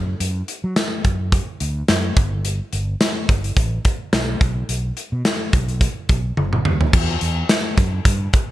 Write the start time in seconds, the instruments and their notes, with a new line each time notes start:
Already playing: fretless electric bass F#2
0.20 fretless electric bass F#2, closed hi-hat
0.48 closed hi-hat
0.64 fretless electric bass F#3
0.76 snare, closed hi-hat, tambourine
1.04 fretless electric bass F#2, kick, closed hi-hat
1.32 kick, closed hi-hat
1.60 fretless electric bass D2, closed hi-hat
1.88 fretless electric bass F#2, snare, closed hi-hat, tambourine
2.17 fretless electric bass G1, kick, closed hi-hat
2.45 closed hi-hat
2.73 fretless electric bass G1, closed hi-hat
3.01 snare, closed hi-hat, tambourine
3.29 fretless electric bass G1, kick, closed hi-hat
3.44 closed hi-hat
3.57 fretless electric bass A1, kick, closed hi-hat
3.85 kick, closed hi-hat
4.13 fretless electric bass B1, snare, closed hi-hat, tambourine
4.41 fretless electric bass B1, kick, closed hi-hat
4.69 fretless electric bass B1, closed hi-hat
4.97 closed hi-hat
5.12 fretless electric bass B2
5.25 snare, closed hi-hat, tambourine
5.53 fretless electric bass B1, kick, closed hi-hat
5.68 closed hi-hat
5.81 kick, closed hi-hat
6.09 fretless electric bass B1, kick, closed hi-hat
6.37 fretless electric bass F#1, high tom
6.53 mid tom
6.65 fretless electric bass D#2, mid tom
6.81 floor tom
6.93 fretless electric bass E2, kick, crash
7.21 fretless electric bass E2, closed hi-hat
7.49 snare, closed hi-hat, tambourine
7.77 fretless electric bass F#2, kick, closed hi-hat
8.05 fretless electric bass G2, kick, closed hi-hat
8.33 kick, closed hi-hat